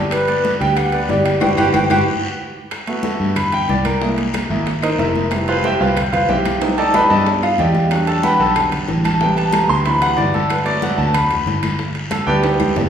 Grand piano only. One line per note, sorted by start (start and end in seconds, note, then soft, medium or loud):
0.00 0.22 G3 medium
0.00 0.22 G4 medium
0.00 0.22 G5 medium
0.28 0.54 B3 medium
0.28 0.54 B4 medium
0.28 0.55 D5 medium
0.60 0.87 G3 medium
0.60 0.87 G4 medium
0.60 0.88 G5 medium
0.93 1.06 B3 medium
0.93 1.06 B4 medium
0.93 1.06 D5 medium
1.09 1.36 G3 medium
1.09 1.36 G4 medium
1.09 1.36 G5 medium
1.41 1.52 F#4 medium
1.41 1.52 G4 medium
1.41 1.52 B4 medium
1.57 1.68 F#4 medium
1.57 1.68 G4 loud
1.57 1.68 B4 loud
1.73 1.84 F#4 medium
1.73 1.84 G4 medium
1.73 1.84 B4 medium
1.90 2.01 F#4 loud
1.90 2.01 G4 loud
1.90 2.01 B4 medium
2.87 3.34 A3 medium
2.87 3.34 B3 medium
2.87 3.35 F#4 medium
3.36 3.52 B5 medium
3.54 3.69 G5 medium
3.70 3.85 D5 medium
3.85 4.15 A#4 medium
4.01 4.23 G#3 soft
4.01 4.23 A#3 soft
4.01 4.24 E4 medium
4.50 4.65 G#3 soft
4.50 4.65 A#3 soft
4.50 4.65 E4 medium
4.83 4.99 D#4 medium
4.83 4.98 A#4 medium
4.83 4.97 C5 medium
4.83 4.99 D#5 medium
4.99 5.31 E4 medium
4.99 5.29 A#4 medium
4.99 5.44 C5 medium
4.99 5.44 E5 medium
5.31 5.77 G3 medium
5.31 5.78 A3 soft
5.31 5.78 B3 soft
5.31 5.78 E4 medium
5.49 5.64 F4 medium
5.49 5.64 B4 medium
5.49 5.64 C5 medium
5.49 5.64 F5 loud
5.65 5.80 G4 medium
5.65 5.80 C5 medium
5.65 5.80 E5 medium
5.65 5.80 G5 medium
5.81 5.96 F4 medium
5.81 5.96 B4 medium
5.81 5.97 C5 medium
5.81 5.96 F5 medium
6.12 6.29 F4 medium
6.12 6.29 B4 medium
6.12 6.28 C5 medium
6.12 6.28 F5 medium
6.29 6.75 G4 medium
6.29 6.60 C5 medium
6.29 6.60 E5 medium
6.29 6.75 G5 medium
6.61 7.08 G3 soft
6.61 7.08 A3 soft
6.61 7.08 D#4 medium
6.78 6.94 A4 medium
6.78 6.94 D5 medium
6.78 6.93 D#5 medium
6.78 6.94 A5 medium
6.95 7.10 B4 medium
6.95 7.09 D#5 medium
6.95 7.10 G5 medium
6.95 7.10 B5 medium
7.10 7.26 A4 medium
7.10 7.26 D5 medium
7.10 7.26 D#5 medium
7.10 7.26 A5 loud
7.43 7.59 F4 medium
7.43 7.59 F5 medium
7.59 8.05 G4 medium
7.59 8.05 D5 medium
7.59 7.89 D#5 medium
7.59 8.04 G5 medium
7.91 9.17 F#3 medium
7.91 9.17 G3 soft
7.91 9.17 D4 medium
8.07 8.23 A4 medium
8.07 8.23 A5 loud
8.23 8.40 B4 medium
8.23 8.40 F#5 medium
8.23 8.40 G5 medium
8.23 8.39 B5 loud
8.40 8.50 A4 medium
8.40 8.50 A5 medium
9.05 9.21 A5 loud
9.20 9.82 C3 soft
9.20 9.83 G3 soft
9.20 9.83 B3 medium
9.20 9.37 G5 medium
9.37 9.53 A5 loud
9.53 9.69 A#5 medium
9.69 9.85 C6 loud
9.85 10.32 C3 medium
9.85 10.32 E3 soft
9.85 10.32 F#3 soft
9.85 10.32 B3 medium
9.85 10.02 B5 medium
10.02 10.18 F#5 loud
10.17 10.33 D5 medium
10.34 10.50 A4 medium
10.50 10.66 B4 medium
10.65 11.12 F#3 medium
10.65 11.12 A3 medium
10.65 11.12 B3 medium
10.65 10.82 D5 loud
10.82 10.98 F#5 medium
10.98 11.14 A5 loud
11.14 11.75 B5 medium
12.11 12.27 A4 medium
12.11 12.27 A5 medium
12.26 12.73 G3 medium
12.26 12.73 A3 medium
12.26 12.74 B3 medium
12.26 12.73 G4 medium
12.26 12.73 B4 medium
12.26 12.73 D5 medium
12.26 12.72 G5 loud